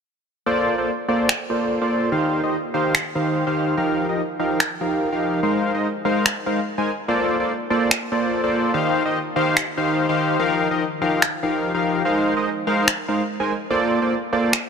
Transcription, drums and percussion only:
1.29 finger snap medium
2.95 finger snap medium
4.60 finger snap medium
6.26 finger snap medium
7.91 finger snap medium
9.57 finger snap medium
11.22 finger snap medium
12.88 finger snap medium
14.53 finger snap medium

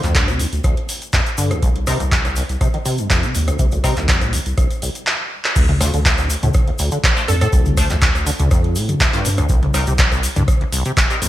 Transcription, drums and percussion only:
0.03 clap soft
0.03 closed hi-hat soft
0.03 shaker soft
0.15 kick loud
0.15 clap loud
0.15 closed hi-hat medium
0.15 shaker soft
0.28 cross-stick soft
0.28 closed hi-hat soft
0.28 shaker soft
0.39 open hi-hat medium
0.39 shaker medium
0.53 closed hi-hat medium
0.53 shaker soft
0.64 kick loud
0.64 cross-stick medium
0.64 closed hi-hat medium
0.64 shaker soft
0.77 closed hi-hat soft
0.89 open hi-hat loud
0.89 shaker medium
1.02 closed hi-hat soft
1.02 shaker soft
1.13 kick loud
1.13 cross-stick soft
1.13 clap loud
1.13 closed hi-hat medium
1.13 shaker medium
1.26 closed hi-hat soft
1.26 shaker soft
1.38 open hi-hat medium
1.38 shaker medium
1.51 cross-stick medium
1.51 closed hi-hat medium
1.51 shaker soft
1.62 kick loud
1.62 closed hi-hat medium
1.62 shaker medium
1.76 closed hi-hat soft
1.87 cross-stick medium
1.87 open hi-hat loud
1.87 shaker medium
2.00 closed hi-hat medium
2.00 shaker soft
2.12 kick loud
2.12 clap loud
2.12 closed hi-hat medium
2.12 shaker soft
2.25 cross-stick soft
2.25 closed hi-hat soft
2.25 shaker soft
2.36 open hi-hat medium
2.36 shaker medium
2.49 closed hi-hat medium
2.49 shaker soft
2.61 kick loud
2.61 cross-stick medium
2.61 closed hi-hat medium
2.61 shaker medium
2.74 closed hi-hat soft
2.85 open hi-hat medium
2.85 shaker medium
2.98 closed hi-hat medium
2.98 shaker soft
3.10 kick loud
3.10 cross-stick soft
3.10 clap loud
3.10 closed hi-hat medium
3.10 shaker soft
3.23 closed hi-hat soft
3.23 shaker soft
3.35 open hi-hat medium
3.35 shaker medium
3.48 cross-stick medium
3.48 closed hi-hat medium
3.48 shaker soft
3.59 kick loud
3.59 closed hi-hat medium
3.59 shaker medium
3.72 closed hi-hat soft
3.72 shaker soft
3.84 kick medium
3.84 cross-stick medium
3.84 open hi-hat loud
3.84 shaker medium
3.97 clap soft
3.97 closed hi-hat medium
3.97 shaker soft
4.08 kick loud
4.08 clap loud
4.08 closed hi-hat medium
4.08 shaker soft
4.21 cross-stick soft
4.21 closed hi-hat soft
4.21 shaker soft
4.33 open hi-hat medium
4.33 shaker medium
4.46 closed hi-hat medium
4.46 shaker soft
4.58 kick loud
4.58 cross-stick medium
4.58 closed hi-hat medium
4.58 shaker medium
4.71 closed hi-hat soft
4.71 shaker soft
4.82 open hi-hat loud
4.82 shaker medium
4.95 closed hi-hat medium
4.95 shaker soft
5.07 clap loud
5.45 clap medium
5.56 kick loud
5.56 closed hi-hat medium
5.56 crash loud
5.56 shaker medium
5.69 closed hi-hat soft
5.69 mid tom medium
5.81 cross-stick medium
5.81 open hi-hat loud
5.81 shaker loud
5.94 closed hi-hat medium
5.94 shaker soft
6.05 kick loud
6.05 clap loud
6.05 closed hi-hat medium
6.05 shaker medium
6.18 cross-stick soft
6.18 closed hi-hat soft
6.18 shaker soft
6.30 open hi-hat loud
6.30 shaker medium
6.43 closed hi-hat medium
6.43 mid tom medium
6.43 shaker soft
6.54 kick loud
6.54 cross-stick medium
6.54 closed hi-hat medium
6.54 shaker soft
6.67 closed hi-hat soft
6.79 open hi-hat loud
6.79 shaker medium
6.91 closed hi-hat medium
6.91 shaker soft
7.04 kick loud
7.04 cross-stick soft
7.04 clap loud
7.04 closed hi-hat medium
7.04 shaker soft
7.17 closed hi-hat soft
7.17 shaker soft
7.28 open hi-hat medium
7.28 shaker medium
7.41 cross-stick medium
7.41 closed hi-hat medium
7.41 shaker soft
7.53 kick loud
7.53 closed hi-hat medium
7.53 shaker medium
7.66 closed hi-hat soft
7.66 mid tom medium
7.66 shaker soft
7.77 kick medium
7.77 cross-stick medium
7.77 open hi-hat loud
7.77 shaker medium
7.89 clap soft
7.89 closed hi-hat medium
7.89 shaker soft
8.01 kick loud
8.01 clap loud
8.01 closed hi-hat medium
8.01 shaker soft
8.15 cross-stick soft
8.15 closed hi-hat soft
8.15 shaker soft
8.27 open hi-hat loud
8.27 shaker medium
8.39 closed hi-hat medium
8.39 mid tom medium
8.39 shaker soft
8.51 kick loud
8.51 cross-stick medium
8.51 closed hi-hat medium
8.51 shaker medium
8.64 closed hi-hat soft
8.76 open hi-hat loud
8.76 shaker medium
8.89 closed hi-hat medium
8.89 mid tom medium
8.89 shaker soft
9.00 kick loud
9.00 cross-stick soft
9.00 clap loud
9.00 closed hi-hat medium
9.00 shaker medium
9.13 closed hi-hat soft
9.13 shaker soft
9.25 open hi-hat medium
9.25 shaker medium
9.38 cross-stick medium
9.38 closed hi-hat medium
9.38 shaker soft
9.49 kick loud
9.49 closed hi-hat medium
9.49 shaker medium
9.63 closed hi-hat soft
9.63 mid tom medium
9.74 cross-stick medium
9.74 open hi-hat loud
9.74 shaker medium
9.87 closed hi-hat soft
9.87 shaker soft
9.98 kick loud
9.98 clap loud
9.98 closed hi-hat medium
9.98 shaker medium
10.12 cross-stick soft
10.12 closed hi-hat soft
10.12 shaker soft
10.23 open hi-hat loud
10.23 shaker loud
10.36 closed hi-hat medium
10.36 mid tom medium
10.36 shaker soft
10.48 kick loud
10.48 cross-stick medium
10.48 closed hi-hat medium
10.48 shaker medium
10.61 closed hi-hat soft
10.72 open hi-hat loud
10.72 shaker loud
10.85 closed hi-hat soft
10.85 shaker soft
10.97 kick loud
10.97 cross-stick soft
10.97 clap loud
10.97 closed hi-hat medium
10.97 shaker medium
11.10 closed hi-hat soft
11.10 shaker soft
11.22 open hi-hat medium
11.22 shaker loud

